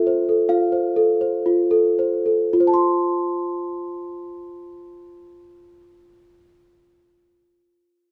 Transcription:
0, 0, Header, 1, 2, 480
1, 0, Start_track
1, 0, Key_signature, -1, "major"
1, 0, Tempo, 874636
1, 269, Tempo, 955414
1, 749, Tempo, 1081081
1, 1229, Tempo, 1147228
1, 1230, Time_signature, 3, 2, 24, 8
1, 3567, End_track
2, 0, Start_track
2, 0, Title_t, "Celesta"
2, 0, Program_c, 0, 8
2, 0, Control_c, 0, 64, 127
2, 0, Note_on_c, 0, 65, 79
2, 0, Note_on_c, 0, 69, 57
2, 0, Note_on_c, 0, 76, 104
2, 37, Note_on_c, 0, 72, 62
2, 103, Note_off_c, 0, 69, 0
2, 159, Note_on_c, 0, 69, 54
2, 225, Note_off_c, 0, 72, 0
2, 261, Note_off_c, 0, 65, 0
2, 267, Note_on_c, 0, 65, 58
2, 269, Note_on_c, 0, 77, 76
2, 270, Note_off_c, 0, 76, 0
2, 343, Note_off_c, 0, 69, 0
2, 386, Note_on_c, 0, 72, 56
2, 507, Note_on_c, 0, 69, 56
2, 576, Note_off_c, 0, 72, 0
2, 631, Note_on_c, 0, 72, 55
2, 701, Note_off_c, 0, 69, 0
2, 749, Note_off_c, 0, 65, 0
2, 755, Note_on_c, 0, 65, 59
2, 821, Note_off_c, 0, 72, 0
2, 866, Note_on_c, 0, 69, 61
2, 983, Note_off_c, 0, 77, 0
2, 990, Note_on_c, 0, 72, 59
2, 1057, Note_off_c, 0, 69, 0
2, 1109, Note_on_c, 0, 69, 53
2, 1183, Note_off_c, 0, 72, 0
2, 1218, Note_off_c, 0, 65, 0
2, 1231, Note_on_c, 0, 65, 78
2, 1232, Note_off_c, 0, 69, 0
2, 1242, Control_c, 0, 64, 0
2, 1261, Note_on_c, 0, 72, 64
2, 1290, Note_on_c, 0, 81, 60
2, 1316, Note_on_c, 0, 84, 64
2, 1374, Control_c, 0, 64, 127
2, 3251, Note_off_c, 0, 65, 0
2, 3281, Note_off_c, 0, 72, 0
2, 3310, Note_off_c, 0, 81, 0
2, 3336, Note_off_c, 0, 84, 0
2, 3567, End_track
0, 0, End_of_file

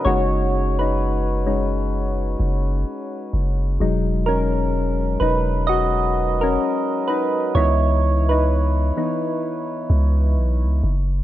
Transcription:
0, 0, Header, 1, 3, 480
1, 0, Start_track
1, 0, Tempo, 937500
1, 27, Time_signature, 4, 2, 24, 8
1, 5753, End_track
2, 0, Start_track
2, 0, Title_t, "Synth keys"
2, 0, Program_c, 0, 88
2, 0, Control_c, 0, 64, 127
2, 24, Note_on_c, 0, 73, 99
2, 28, Note_on_c, 0, 56, 54
2, 31, Note_on_c, 0, 61, 50
2, 34, Control_c, 0, 64, 0
2, 34, Note_on_c, 0, 63, 60
2, 35, Note_on_c, 0, 66, 76
2, 130, Control_c, 0, 64, 127
2, 389, Note_off_c, 0, 66, 0
2, 403, Note_on_c, 0, 71, 74
2, 408, Note_off_c, 0, 63, 0
2, 415, Note_on_c, 0, 63, 65
2, 416, Note_off_c, 0, 73, 0
2, 743, Note_off_c, 0, 56, 0
2, 744, Note_off_c, 0, 61, 0
2, 747, Note_off_c, 0, 63, 0
2, 749, Note_on_c, 0, 56, 47
2, 750, Note_on_c, 0, 61, 44
2, 753, Note_on_c, 0, 63, 54
2, 967, Note_off_c, 0, 56, 0
2, 968, Note_off_c, 0, 61, 0
2, 969, Note_off_c, 0, 63, 0
2, 1685, Note_off_c, 0, 71, 0
2, 1946, Note_on_c, 0, 54, 58
2, 1950, Note_on_c, 0, 56, 47
2, 1952, Control_c, 0, 64, 0
2, 1952, Note_on_c, 0, 63, 60
2, 2054, Control_c, 0, 64, 127
2, 2182, Note_on_c, 0, 70, 84
2, 2194, Note_on_c, 0, 61, 66
2, 2644, Note_off_c, 0, 70, 0
2, 2650, Note_off_c, 0, 61, 0
2, 2662, Note_on_c, 0, 71, 89
2, 2668, Note_off_c, 0, 63, 0
2, 2674, Note_on_c, 0, 63, 69
2, 2887, Note_off_c, 0, 71, 0
2, 2894, Note_off_c, 0, 63, 0
2, 2903, Note_on_c, 0, 75, 101
2, 2915, Note_on_c, 0, 66, 76
2, 3270, Note_off_c, 0, 66, 0
2, 3283, Note_on_c, 0, 70, 89
2, 3294, Note_on_c, 0, 61, 72
2, 3296, Note_off_c, 0, 75, 0
2, 3605, Note_off_c, 0, 70, 0
2, 3610, Note_off_c, 0, 61, 0
2, 3623, Note_on_c, 0, 71, 90
2, 3634, Note_on_c, 0, 63, 65
2, 3694, Note_off_c, 0, 71, 0
2, 3705, Note_off_c, 0, 63, 0
2, 3846, Note_off_c, 0, 54, 0
2, 3848, Note_off_c, 0, 56, 0
2, 3865, Note_on_c, 0, 73, 102
2, 3868, Note_on_c, 0, 52, 54
2, 3872, Note_on_c, 0, 59, 52
2, 3873, Control_c, 0, 64, 0
2, 3875, Note_on_c, 0, 63, 61
2, 3876, Note_on_c, 0, 64, 78
2, 3976, Control_c, 0, 64, 127
2, 4230, Note_off_c, 0, 64, 0
2, 4244, Note_on_c, 0, 71, 78
2, 4249, Note_off_c, 0, 63, 0
2, 4255, Note_on_c, 0, 63, 63
2, 4257, Note_off_c, 0, 73, 0
2, 4567, Note_off_c, 0, 52, 0
2, 4569, Note_off_c, 0, 59, 0
2, 4590, Note_off_c, 0, 63, 0
2, 4592, Note_on_c, 0, 52, 50
2, 4593, Note_on_c, 0, 59, 45
2, 4596, Note_on_c, 0, 63, 55
2, 4809, Note_off_c, 0, 52, 0
2, 4810, Note_off_c, 0, 59, 0
2, 4811, Note_off_c, 0, 63, 0
2, 5526, Note_off_c, 0, 71, 0
2, 5553, Control_c, 0, 64, 0
2, 5647, Control_c, 0, 64, 127
2, 5753, End_track
3, 0, Start_track
3, 0, Title_t, "808-style bass"
3, 0, Program_c, 1, 38
3, 29, Note_on_c, 1, 30, 110
3, 1207, Note_off_c, 1, 30, 0
3, 1227, Note_on_c, 1, 30, 97
3, 1457, Note_off_c, 1, 30, 0
3, 1708, Note_on_c, 1, 30, 95
3, 1938, Note_off_c, 1, 30, 0
3, 1947, Note_on_c, 1, 28, 105
3, 2646, Note_off_c, 1, 28, 0
3, 2666, Note_on_c, 1, 28, 94
3, 3366, Note_off_c, 1, 28, 0
3, 3866, Note_on_c, 1, 37, 105
3, 4566, Note_off_c, 1, 37, 0
3, 5068, Note_on_c, 1, 37, 104
3, 5307, Note_on_c, 1, 35, 91
3, 5315, Note_off_c, 1, 37, 0
3, 5447, Note_on_c, 1, 37, 95
3, 5455, Note_off_c, 1, 35, 0
3, 5542, Note_off_c, 1, 37, 0
3, 5548, Note_on_c, 1, 30, 100
3, 5753, Note_off_c, 1, 30, 0
3, 5753, End_track
0, 0, End_of_file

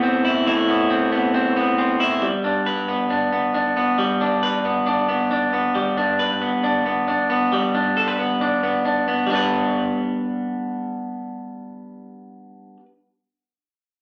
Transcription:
0, 0, Header, 1, 2, 480
1, 0, Start_track
1, 0, Key_signature, 1, "major"
1, 0, Tempo, 441826
1, 510, Time_signature, 4, 2, 24, 8
1, 15226, End_track
2, 0, Start_track
2, 0, Title_t, "Clean electric guitar"
2, 0, Program_c, 0, 27
2, 0, Note_on_c, 0, 45, 79
2, 0, Note_on_c, 0, 59, 60
2, 0, Note_on_c, 0, 64, 69
2, 31, Note_on_c, 0, 60, 63
2, 255, Note_off_c, 0, 64, 0
2, 268, Note_on_c, 0, 64, 72
2, 494, Note_off_c, 0, 45, 0
2, 500, Note_off_c, 0, 64, 0
2, 507, Note_on_c, 0, 45, 85
2, 513, Note_on_c, 0, 64, 73
2, 736, Note_off_c, 0, 59, 0
2, 740, Note_on_c, 0, 59, 61
2, 968, Note_off_c, 0, 60, 0
2, 981, Note_on_c, 0, 60, 63
2, 1214, Note_off_c, 0, 59, 0
2, 1219, Note_on_c, 0, 59, 67
2, 1446, Note_off_c, 0, 60, 0
2, 1459, Note_on_c, 0, 60, 62
2, 1698, Note_off_c, 0, 59, 0
2, 1702, Note_on_c, 0, 59, 59
2, 1925, Note_off_c, 0, 60, 0
2, 1938, Note_on_c, 0, 60, 62
2, 2162, Note_off_c, 0, 64, 0
2, 2175, Note_on_c, 0, 64, 72
2, 2413, Note_on_c, 0, 55, 64
2, 2416, Note_off_c, 0, 45, 0
2, 2463, Note_off_c, 0, 64, 0
2, 2464, Note_off_c, 0, 60, 0
2, 2654, Note_on_c, 0, 62, 53
2, 2895, Note_on_c, 0, 71, 57
2, 3129, Note_off_c, 0, 59, 0
2, 3133, Note_on_c, 0, 59, 54
2, 3367, Note_off_c, 0, 62, 0
2, 3372, Note_on_c, 0, 62, 49
2, 3608, Note_off_c, 0, 59, 0
2, 3612, Note_on_c, 0, 59, 52
2, 3847, Note_off_c, 0, 62, 0
2, 3851, Note_on_c, 0, 62, 52
2, 4089, Note_off_c, 0, 59, 0
2, 4093, Note_on_c, 0, 59, 57
2, 4326, Note_off_c, 0, 55, 0
2, 4330, Note_on_c, 0, 55, 70
2, 4571, Note_off_c, 0, 62, 0
2, 4575, Note_on_c, 0, 62, 54
2, 4807, Note_off_c, 0, 71, 0
2, 4812, Note_on_c, 0, 71, 57
2, 5047, Note_off_c, 0, 59, 0
2, 5052, Note_on_c, 0, 59, 54
2, 5282, Note_off_c, 0, 62, 0
2, 5286, Note_on_c, 0, 62, 57
2, 5522, Note_off_c, 0, 59, 0
2, 5526, Note_on_c, 0, 59, 53
2, 5765, Note_off_c, 0, 62, 0
2, 5769, Note_on_c, 0, 62, 52
2, 6005, Note_off_c, 0, 59, 0
2, 6009, Note_on_c, 0, 59, 55
2, 6245, Note_off_c, 0, 55, 0
2, 6249, Note_on_c, 0, 55, 67
2, 6486, Note_off_c, 0, 62, 0
2, 6490, Note_on_c, 0, 62, 57
2, 6724, Note_off_c, 0, 71, 0
2, 6729, Note_on_c, 0, 71, 62
2, 6967, Note_off_c, 0, 59, 0
2, 6971, Note_on_c, 0, 59, 55
2, 7205, Note_off_c, 0, 62, 0
2, 7210, Note_on_c, 0, 62, 50
2, 7445, Note_off_c, 0, 59, 0
2, 7449, Note_on_c, 0, 59, 52
2, 7687, Note_off_c, 0, 62, 0
2, 7691, Note_on_c, 0, 62, 54
2, 7925, Note_off_c, 0, 59, 0
2, 7930, Note_on_c, 0, 59, 54
2, 8171, Note_off_c, 0, 55, 0
2, 8175, Note_on_c, 0, 55, 73
2, 8411, Note_off_c, 0, 62, 0
2, 8416, Note_on_c, 0, 62, 58
2, 8653, Note_off_c, 0, 71, 0
2, 8657, Note_on_c, 0, 69, 49
2, 8775, Note_off_c, 0, 69, 0
2, 8775, Note_on_c, 0, 71, 49
2, 8895, Note_off_c, 0, 59, 0
2, 8899, Note_on_c, 0, 59, 52
2, 9135, Note_off_c, 0, 62, 0
2, 9139, Note_on_c, 0, 62, 49
2, 9374, Note_off_c, 0, 59, 0
2, 9379, Note_on_c, 0, 59, 49
2, 9615, Note_off_c, 0, 62, 0
2, 9619, Note_on_c, 0, 62, 49
2, 9859, Note_off_c, 0, 59, 0
2, 9863, Note_on_c, 0, 59, 52
2, 10063, Note_off_c, 0, 55, 0
2, 10067, Note_on_c, 0, 55, 64
2, 10100, Note_off_c, 0, 62, 0
2, 10105, Note_on_c, 0, 62, 71
2, 10131, Note_off_c, 0, 59, 0
2, 10135, Note_on_c, 0, 59, 70
2, 10147, Note_off_c, 0, 71, 0
2, 10163, Note_on_c, 0, 71, 67
2, 13869, Note_off_c, 0, 55, 0
2, 13907, Note_off_c, 0, 62, 0
2, 13938, Note_off_c, 0, 59, 0
2, 13966, Note_off_c, 0, 71, 0
2, 15226, End_track
0, 0, End_of_file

